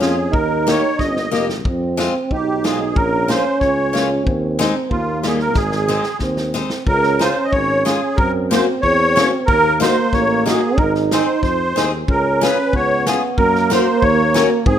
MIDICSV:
0, 0, Header, 1, 6, 480
1, 0, Start_track
1, 0, Key_signature, -4, "major"
1, 0, Tempo, 654308
1, 239, Time_signature, 2, 2, 24, 8
1, 5038, Key_signature, -5, "major"
1, 5519, Tempo, 648649
1, 10896, End_track
2, 0, Start_track
2, 0, Title_t, "Accordion"
2, 0, Program_c, 0, 21
2, 7, Note_on_c, 0, 68, 74
2, 238, Note_on_c, 0, 70, 77
2, 245, Note_off_c, 0, 68, 0
2, 498, Note_off_c, 0, 70, 0
2, 506, Note_on_c, 0, 73, 92
2, 724, Note_on_c, 0, 75, 85
2, 736, Note_off_c, 0, 73, 0
2, 1066, Note_off_c, 0, 75, 0
2, 1712, Note_on_c, 0, 67, 75
2, 1935, Note_off_c, 0, 67, 0
2, 1947, Note_on_c, 0, 68, 67
2, 2171, Note_on_c, 0, 70, 86
2, 2179, Note_off_c, 0, 68, 0
2, 2415, Note_on_c, 0, 72, 85
2, 2427, Note_off_c, 0, 70, 0
2, 2629, Note_off_c, 0, 72, 0
2, 2638, Note_on_c, 0, 73, 81
2, 2979, Note_off_c, 0, 73, 0
2, 3602, Note_on_c, 0, 65, 75
2, 3856, Note_off_c, 0, 65, 0
2, 3857, Note_on_c, 0, 68, 79
2, 3958, Note_off_c, 0, 68, 0
2, 3971, Note_on_c, 0, 70, 85
2, 4081, Note_on_c, 0, 68, 83
2, 4083, Note_off_c, 0, 70, 0
2, 4528, Note_off_c, 0, 68, 0
2, 5045, Note_on_c, 0, 70, 101
2, 5287, Note_on_c, 0, 72, 85
2, 5301, Note_off_c, 0, 70, 0
2, 5461, Note_on_c, 0, 75, 71
2, 5474, Note_off_c, 0, 72, 0
2, 5512, Note_on_c, 0, 73, 104
2, 5515, Note_off_c, 0, 75, 0
2, 5750, Note_off_c, 0, 73, 0
2, 5759, Note_on_c, 0, 68, 79
2, 5991, Note_on_c, 0, 70, 96
2, 6002, Note_off_c, 0, 68, 0
2, 6106, Note_off_c, 0, 70, 0
2, 6249, Note_on_c, 0, 72, 83
2, 6353, Note_off_c, 0, 72, 0
2, 6476, Note_on_c, 0, 73, 119
2, 6820, Note_off_c, 0, 73, 0
2, 6956, Note_on_c, 0, 70, 109
2, 7192, Note_off_c, 0, 70, 0
2, 7213, Note_on_c, 0, 72, 96
2, 7449, Note_off_c, 0, 72, 0
2, 7452, Note_on_c, 0, 73, 96
2, 7680, Note_off_c, 0, 73, 0
2, 7693, Note_on_c, 0, 68, 80
2, 7926, Note_on_c, 0, 70, 84
2, 7930, Note_off_c, 0, 68, 0
2, 8039, Note_off_c, 0, 70, 0
2, 8184, Note_on_c, 0, 72, 87
2, 8398, Note_off_c, 0, 72, 0
2, 8409, Note_on_c, 0, 72, 98
2, 8751, Note_off_c, 0, 72, 0
2, 8912, Note_on_c, 0, 70, 92
2, 9160, Note_off_c, 0, 70, 0
2, 9162, Note_on_c, 0, 71, 89
2, 9388, Note_off_c, 0, 71, 0
2, 9393, Note_on_c, 0, 73, 94
2, 9615, Note_off_c, 0, 73, 0
2, 9631, Note_on_c, 0, 68, 69
2, 9731, Note_off_c, 0, 68, 0
2, 9849, Note_on_c, 0, 70, 96
2, 10105, Note_off_c, 0, 70, 0
2, 10110, Note_on_c, 0, 72, 88
2, 10323, Note_on_c, 0, 73, 102
2, 10338, Note_off_c, 0, 72, 0
2, 10661, Note_off_c, 0, 73, 0
2, 10807, Note_on_c, 0, 68, 96
2, 10896, Note_off_c, 0, 68, 0
2, 10896, End_track
3, 0, Start_track
3, 0, Title_t, "Steel-string acoustic guitar"
3, 0, Program_c, 1, 25
3, 0, Note_on_c, 1, 58, 51
3, 4, Note_on_c, 1, 61, 53
3, 7, Note_on_c, 1, 65, 48
3, 104, Note_off_c, 1, 58, 0
3, 110, Note_off_c, 1, 61, 0
3, 110, Note_off_c, 1, 65, 0
3, 489, Note_on_c, 1, 58, 64
3, 495, Note_on_c, 1, 67, 74
3, 496, Note_on_c, 1, 63, 51
3, 594, Note_off_c, 1, 58, 0
3, 596, Note_off_c, 1, 63, 0
3, 597, Note_off_c, 1, 67, 0
3, 964, Note_on_c, 1, 58, 57
3, 969, Note_on_c, 1, 63, 55
3, 974, Note_on_c, 1, 67, 47
3, 1073, Note_off_c, 1, 58, 0
3, 1077, Note_off_c, 1, 63, 0
3, 1077, Note_off_c, 1, 67, 0
3, 1448, Note_on_c, 1, 56, 70
3, 1452, Note_on_c, 1, 60, 66
3, 1456, Note_on_c, 1, 65, 79
3, 1557, Note_off_c, 1, 56, 0
3, 1558, Note_off_c, 1, 60, 0
3, 1561, Note_off_c, 1, 65, 0
3, 1937, Note_on_c, 1, 56, 47
3, 1941, Note_on_c, 1, 60, 55
3, 1944, Note_on_c, 1, 65, 54
3, 2042, Note_off_c, 1, 56, 0
3, 2043, Note_off_c, 1, 60, 0
3, 2045, Note_off_c, 1, 65, 0
3, 2408, Note_on_c, 1, 58, 64
3, 2415, Note_on_c, 1, 61, 62
3, 2421, Note_on_c, 1, 65, 59
3, 2516, Note_off_c, 1, 58, 0
3, 2521, Note_off_c, 1, 61, 0
3, 2521, Note_off_c, 1, 65, 0
3, 2883, Note_on_c, 1, 58, 50
3, 2888, Note_on_c, 1, 61, 49
3, 2896, Note_on_c, 1, 65, 61
3, 2992, Note_off_c, 1, 58, 0
3, 2994, Note_off_c, 1, 61, 0
3, 2998, Note_off_c, 1, 65, 0
3, 3366, Note_on_c, 1, 56, 82
3, 3369, Note_on_c, 1, 60, 69
3, 3379, Note_on_c, 1, 63, 91
3, 3471, Note_off_c, 1, 56, 0
3, 3472, Note_off_c, 1, 60, 0
3, 3477, Note_off_c, 1, 63, 0
3, 3840, Note_on_c, 1, 55, 48
3, 3846, Note_on_c, 1, 58, 51
3, 3854, Note_on_c, 1, 63, 55
3, 3946, Note_off_c, 1, 55, 0
3, 3948, Note_off_c, 1, 58, 0
3, 3953, Note_off_c, 1, 63, 0
3, 4316, Note_on_c, 1, 56, 61
3, 4322, Note_on_c, 1, 60, 53
3, 4327, Note_on_c, 1, 63, 67
3, 4424, Note_off_c, 1, 56, 0
3, 4426, Note_off_c, 1, 60, 0
3, 4429, Note_off_c, 1, 63, 0
3, 4797, Note_on_c, 1, 56, 62
3, 4803, Note_on_c, 1, 60, 54
3, 4808, Note_on_c, 1, 63, 66
3, 4905, Note_off_c, 1, 56, 0
3, 4908, Note_off_c, 1, 60, 0
3, 4911, Note_off_c, 1, 63, 0
3, 5277, Note_on_c, 1, 56, 59
3, 5287, Note_on_c, 1, 61, 66
3, 5292, Note_on_c, 1, 65, 61
3, 5387, Note_off_c, 1, 56, 0
3, 5393, Note_off_c, 1, 61, 0
3, 5393, Note_off_c, 1, 65, 0
3, 5761, Note_on_c, 1, 56, 60
3, 5766, Note_on_c, 1, 61, 51
3, 5769, Note_on_c, 1, 65, 59
3, 5870, Note_off_c, 1, 56, 0
3, 5872, Note_off_c, 1, 61, 0
3, 5874, Note_off_c, 1, 65, 0
3, 6247, Note_on_c, 1, 58, 70
3, 6251, Note_on_c, 1, 61, 60
3, 6260, Note_on_c, 1, 66, 83
3, 6354, Note_off_c, 1, 58, 0
3, 6355, Note_off_c, 1, 61, 0
3, 6360, Note_off_c, 1, 66, 0
3, 6728, Note_on_c, 1, 58, 60
3, 6735, Note_on_c, 1, 61, 60
3, 6740, Note_on_c, 1, 66, 62
3, 6835, Note_off_c, 1, 58, 0
3, 6838, Note_off_c, 1, 61, 0
3, 6841, Note_off_c, 1, 66, 0
3, 7203, Note_on_c, 1, 58, 75
3, 7209, Note_on_c, 1, 63, 63
3, 7217, Note_on_c, 1, 66, 76
3, 7311, Note_off_c, 1, 58, 0
3, 7314, Note_off_c, 1, 63, 0
3, 7318, Note_off_c, 1, 66, 0
3, 7689, Note_on_c, 1, 58, 63
3, 7693, Note_on_c, 1, 63, 58
3, 7702, Note_on_c, 1, 66, 67
3, 7794, Note_off_c, 1, 58, 0
3, 7796, Note_off_c, 1, 63, 0
3, 7801, Note_off_c, 1, 66, 0
3, 8182, Note_on_c, 1, 60, 66
3, 8185, Note_on_c, 1, 63, 63
3, 8191, Note_on_c, 1, 68, 75
3, 8282, Note_off_c, 1, 60, 0
3, 8284, Note_off_c, 1, 63, 0
3, 8287, Note_off_c, 1, 68, 0
3, 8653, Note_on_c, 1, 60, 57
3, 8662, Note_on_c, 1, 63, 54
3, 8666, Note_on_c, 1, 68, 65
3, 8761, Note_off_c, 1, 60, 0
3, 8765, Note_off_c, 1, 63, 0
3, 8767, Note_off_c, 1, 68, 0
3, 9138, Note_on_c, 1, 61, 70
3, 9143, Note_on_c, 1, 65, 48
3, 9149, Note_on_c, 1, 68, 73
3, 9244, Note_off_c, 1, 61, 0
3, 9245, Note_off_c, 1, 65, 0
3, 9249, Note_off_c, 1, 68, 0
3, 9620, Note_on_c, 1, 61, 59
3, 9625, Note_on_c, 1, 65, 57
3, 9633, Note_on_c, 1, 68, 72
3, 9723, Note_off_c, 1, 61, 0
3, 9726, Note_off_c, 1, 65, 0
3, 9730, Note_off_c, 1, 68, 0
3, 10090, Note_on_c, 1, 61, 69
3, 10098, Note_on_c, 1, 66, 71
3, 10102, Note_on_c, 1, 70, 74
3, 10196, Note_off_c, 1, 61, 0
3, 10201, Note_off_c, 1, 66, 0
3, 10201, Note_off_c, 1, 70, 0
3, 10566, Note_on_c, 1, 61, 68
3, 10573, Note_on_c, 1, 66, 64
3, 10577, Note_on_c, 1, 70, 58
3, 10672, Note_off_c, 1, 61, 0
3, 10677, Note_off_c, 1, 66, 0
3, 10677, Note_off_c, 1, 70, 0
3, 10896, End_track
4, 0, Start_track
4, 0, Title_t, "Euphonium"
4, 0, Program_c, 2, 58
4, 0, Note_on_c, 2, 61, 90
4, 226, Note_off_c, 2, 61, 0
4, 231, Note_on_c, 2, 63, 95
4, 941, Note_off_c, 2, 63, 0
4, 1210, Note_on_c, 2, 60, 82
4, 1701, Note_on_c, 2, 63, 84
4, 1712, Note_off_c, 2, 60, 0
4, 2119, Note_off_c, 2, 63, 0
4, 2119, Note_on_c, 2, 63, 57
4, 2167, Note_on_c, 2, 61, 95
4, 2178, Note_off_c, 2, 63, 0
4, 3119, Note_on_c, 2, 60, 85
4, 3130, Note_off_c, 2, 61, 0
4, 3592, Note_on_c, 2, 58, 83
4, 3603, Note_off_c, 2, 60, 0
4, 4073, Note_on_c, 2, 56, 72
4, 4084, Note_off_c, 2, 58, 0
4, 4361, Note_off_c, 2, 56, 0
4, 4562, Note_on_c, 2, 60, 74
4, 4793, Note_off_c, 2, 60, 0
4, 4806, Note_on_c, 2, 60, 60
4, 5021, Note_off_c, 2, 60, 0
4, 5037, Note_on_c, 2, 61, 82
4, 6011, Note_on_c, 2, 60, 76
4, 6022, Note_off_c, 2, 61, 0
4, 6969, Note_on_c, 2, 58, 103
4, 6980, Note_off_c, 2, 60, 0
4, 7927, Note_on_c, 2, 63, 89
4, 7938, Note_off_c, 2, 58, 0
4, 8662, Note_off_c, 2, 63, 0
4, 8892, Note_on_c, 2, 61, 103
4, 9378, Note_on_c, 2, 59, 91
4, 9389, Note_off_c, 2, 61, 0
4, 9847, Note_on_c, 2, 58, 99
4, 9858, Note_off_c, 2, 59, 0
4, 10804, Note_on_c, 2, 60, 103
4, 10815, Note_off_c, 2, 58, 0
4, 10896, Note_off_c, 2, 60, 0
4, 10896, End_track
5, 0, Start_track
5, 0, Title_t, "Tuba"
5, 0, Program_c, 3, 58
5, 0, Note_on_c, 3, 41, 81
5, 242, Note_on_c, 3, 39, 92
5, 253, Note_off_c, 3, 41, 0
5, 555, Note_off_c, 3, 39, 0
5, 726, Note_on_c, 3, 31, 75
5, 951, Note_off_c, 3, 31, 0
5, 973, Note_on_c, 3, 29, 73
5, 1212, Note_on_c, 3, 41, 88
5, 1223, Note_off_c, 3, 29, 0
5, 1524, Note_off_c, 3, 41, 0
5, 1695, Note_on_c, 3, 35, 83
5, 2174, Note_on_c, 3, 34, 101
5, 2185, Note_off_c, 3, 35, 0
5, 2483, Note_off_c, 3, 34, 0
5, 2651, Note_on_c, 3, 37, 83
5, 3130, Note_on_c, 3, 39, 97
5, 3141, Note_off_c, 3, 37, 0
5, 3437, Note_off_c, 3, 39, 0
5, 3599, Note_on_c, 3, 39, 83
5, 4075, Note_on_c, 3, 32, 95
5, 4086, Note_off_c, 3, 39, 0
5, 4387, Note_off_c, 3, 32, 0
5, 4555, Note_on_c, 3, 39, 74
5, 4869, Note_off_c, 3, 39, 0
5, 5035, Note_on_c, 3, 37, 95
5, 5349, Note_off_c, 3, 37, 0
5, 5523, Note_on_c, 3, 32, 76
5, 5835, Note_off_c, 3, 32, 0
5, 6004, Note_on_c, 3, 42, 95
5, 6316, Note_off_c, 3, 42, 0
5, 6491, Note_on_c, 3, 40, 90
5, 6801, Note_off_c, 3, 40, 0
5, 6965, Note_on_c, 3, 39, 88
5, 7276, Note_off_c, 3, 39, 0
5, 7447, Note_on_c, 3, 33, 85
5, 7758, Note_off_c, 3, 33, 0
5, 7924, Note_on_c, 3, 32, 91
5, 8238, Note_off_c, 3, 32, 0
5, 8406, Note_on_c, 3, 41, 70
5, 8634, Note_off_c, 3, 41, 0
5, 8655, Note_on_c, 3, 39, 65
5, 8865, Note_off_c, 3, 39, 0
5, 8895, Note_on_c, 3, 37, 82
5, 9206, Note_off_c, 3, 37, 0
5, 9373, Note_on_c, 3, 37, 70
5, 9683, Note_off_c, 3, 37, 0
5, 9851, Note_on_c, 3, 42, 92
5, 10160, Note_off_c, 3, 42, 0
5, 10328, Note_on_c, 3, 39, 88
5, 10636, Note_off_c, 3, 39, 0
5, 10802, Note_on_c, 3, 44, 100
5, 10896, Note_off_c, 3, 44, 0
5, 10896, End_track
6, 0, Start_track
6, 0, Title_t, "Drums"
6, 12, Note_on_c, 9, 38, 64
6, 86, Note_off_c, 9, 38, 0
6, 245, Note_on_c, 9, 36, 76
6, 319, Note_off_c, 9, 36, 0
6, 496, Note_on_c, 9, 38, 75
6, 569, Note_off_c, 9, 38, 0
6, 728, Note_on_c, 9, 36, 56
6, 731, Note_on_c, 9, 38, 35
6, 802, Note_off_c, 9, 36, 0
6, 805, Note_off_c, 9, 38, 0
6, 855, Note_on_c, 9, 38, 37
6, 929, Note_off_c, 9, 38, 0
6, 979, Note_on_c, 9, 38, 57
6, 1052, Note_off_c, 9, 38, 0
6, 1096, Note_on_c, 9, 38, 55
6, 1169, Note_off_c, 9, 38, 0
6, 1212, Note_on_c, 9, 36, 75
6, 1285, Note_off_c, 9, 36, 0
6, 1460, Note_on_c, 9, 38, 66
6, 1533, Note_off_c, 9, 38, 0
6, 1693, Note_on_c, 9, 36, 52
6, 1767, Note_off_c, 9, 36, 0
6, 1943, Note_on_c, 9, 38, 70
6, 2016, Note_off_c, 9, 38, 0
6, 2173, Note_on_c, 9, 36, 83
6, 2247, Note_off_c, 9, 36, 0
6, 2421, Note_on_c, 9, 38, 74
6, 2494, Note_off_c, 9, 38, 0
6, 2649, Note_on_c, 9, 38, 21
6, 2650, Note_on_c, 9, 36, 52
6, 2723, Note_off_c, 9, 36, 0
6, 2723, Note_off_c, 9, 38, 0
6, 2902, Note_on_c, 9, 38, 69
6, 2975, Note_off_c, 9, 38, 0
6, 3130, Note_on_c, 9, 36, 74
6, 3203, Note_off_c, 9, 36, 0
6, 3377, Note_on_c, 9, 38, 74
6, 3451, Note_off_c, 9, 38, 0
6, 3602, Note_on_c, 9, 36, 54
6, 3675, Note_off_c, 9, 36, 0
6, 3841, Note_on_c, 9, 38, 65
6, 3914, Note_off_c, 9, 38, 0
6, 3958, Note_on_c, 9, 38, 21
6, 4031, Note_off_c, 9, 38, 0
6, 4066, Note_on_c, 9, 38, 43
6, 4075, Note_on_c, 9, 36, 83
6, 4140, Note_off_c, 9, 38, 0
6, 4149, Note_off_c, 9, 36, 0
6, 4195, Note_on_c, 9, 38, 40
6, 4268, Note_off_c, 9, 38, 0
6, 4315, Note_on_c, 9, 38, 47
6, 4389, Note_off_c, 9, 38, 0
6, 4426, Note_on_c, 9, 38, 42
6, 4499, Note_off_c, 9, 38, 0
6, 4542, Note_on_c, 9, 38, 47
6, 4552, Note_on_c, 9, 36, 48
6, 4616, Note_off_c, 9, 38, 0
6, 4626, Note_off_c, 9, 36, 0
6, 4673, Note_on_c, 9, 38, 44
6, 4746, Note_off_c, 9, 38, 0
6, 4799, Note_on_c, 9, 38, 52
6, 4872, Note_off_c, 9, 38, 0
6, 4914, Note_on_c, 9, 38, 57
6, 4987, Note_off_c, 9, 38, 0
6, 5037, Note_on_c, 9, 36, 73
6, 5110, Note_off_c, 9, 36, 0
6, 5160, Note_on_c, 9, 38, 28
6, 5233, Note_off_c, 9, 38, 0
6, 5285, Note_on_c, 9, 38, 77
6, 5285, Note_on_c, 9, 44, 38
6, 5359, Note_off_c, 9, 38, 0
6, 5359, Note_off_c, 9, 44, 0
6, 5521, Note_on_c, 9, 36, 58
6, 5595, Note_off_c, 9, 36, 0
6, 5772, Note_on_c, 9, 38, 64
6, 5772, Note_on_c, 9, 44, 39
6, 5846, Note_off_c, 9, 38, 0
6, 5846, Note_off_c, 9, 44, 0
6, 6005, Note_on_c, 9, 36, 83
6, 6079, Note_off_c, 9, 36, 0
6, 6256, Note_on_c, 9, 38, 83
6, 6256, Note_on_c, 9, 44, 47
6, 6330, Note_off_c, 9, 38, 0
6, 6330, Note_off_c, 9, 44, 0
6, 6488, Note_on_c, 9, 36, 51
6, 6562, Note_off_c, 9, 36, 0
6, 6739, Note_on_c, 9, 38, 79
6, 6739, Note_on_c, 9, 44, 41
6, 6813, Note_off_c, 9, 38, 0
6, 6813, Note_off_c, 9, 44, 0
6, 6968, Note_on_c, 9, 36, 81
6, 7042, Note_off_c, 9, 36, 0
6, 7222, Note_on_c, 9, 38, 76
6, 7222, Note_on_c, 9, 44, 45
6, 7296, Note_off_c, 9, 38, 0
6, 7296, Note_off_c, 9, 44, 0
6, 7446, Note_on_c, 9, 36, 58
6, 7451, Note_on_c, 9, 38, 24
6, 7520, Note_off_c, 9, 36, 0
6, 7525, Note_off_c, 9, 38, 0
6, 7703, Note_on_c, 9, 38, 76
6, 7703, Note_on_c, 9, 44, 45
6, 7777, Note_off_c, 9, 38, 0
6, 7777, Note_off_c, 9, 44, 0
6, 7928, Note_on_c, 9, 36, 82
6, 8002, Note_off_c, 9, 36, 0
6, 8053, Note_on_c, 9, 38, 29
6, 8127, Note_off_c, 9, 38, 0
6, 8176, Note_on_c, 9, 38, 77
6, 8176, Note_on_c, 9, 44, 43
6, 8250, Note_off_c, 9, 38, 0
6, 8250, Note_off_c, 9, 44, 0
6, 8409, Note_on_c, 9, 36, 59
6, 8411, Note_on_c, 9, 38, 25
6, 8483, Note_off_c, 9, 36, 0
6, 8485, Note_off_c, 9, 38, 0
6, 8664, Note_on_c, 9, 38, 75
6, 8664, Note_on_c, 9, 44, 39
6, 8738, Note_off_c, 9, 38, 0
6, 8738, Note_off_c, 9, 44, 0
6, 8894, Note_on_c, 9, 36, 79
6, 8968, Note_off_c, 9, 36, 0
6, 9152, Note_on_c, 9, 38, 78
6, 9152, Note_on_c, 9, 44, 42
6, 9226, Note_off_c, 9, 38, 0
6, 9226, Note_off_c, 9, 44, 0
6, 9374, Note_on_c, 9, 36, 64
6, 9448, Note_off_c, 9, 36, 0
6, 9620, Note_on_c, 9, 38, 77
6, 9620, Note_on_c, 9, 44, 41
6, 9694, Note_off_c, 9, 38, 0
6, 9694, Note_off_c, 9, 44, 0
6, 9851, Note_on_c, 9, 36, 76
6, 9925, Note_off_c, 9, 36, 0
6, 9982, Note_on_c, 9, 38, 30
6, 10056, Note_off_c, 9, 38, 0
6, 10100, Note_on_c, 9, 38, 74
6, 10100, Note_on_c, 9, 44, 41
6, 10174, Note_off_c, 9, 38, 0
6, 10174, Note_off_c, 9, 44, 0
6, 10330, Note_on_c, 9, 36, 67
6, 10404, Note_off_c, 9, 36, 0
6, 10574, Note_on_c, 9, 38, 74
6, 10574, Note_on_c, 9, 44, 45
6, 10648, Note_off_c, 9, 38, 0
6, 10648, Note_off_c, 9, 44, 0
6, 10801, Note_on_c, 9, 36, 90
6, 10875, Note_off_c, 9, 36, 0
6, 10896, End_track
0, 0, End_of_file